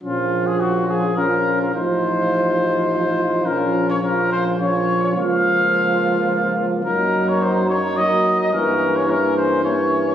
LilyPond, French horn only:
\new Staff \with { instrumentName = "French horn" } { \time 3/4 \key bes \minor \tempo 4 = 106 des'2 des'4 | ees'2. | des'4 des'4 des'4 | bes2. |
\key ees \dorian bes2 bes4 | bes4 bes4 bes4 | }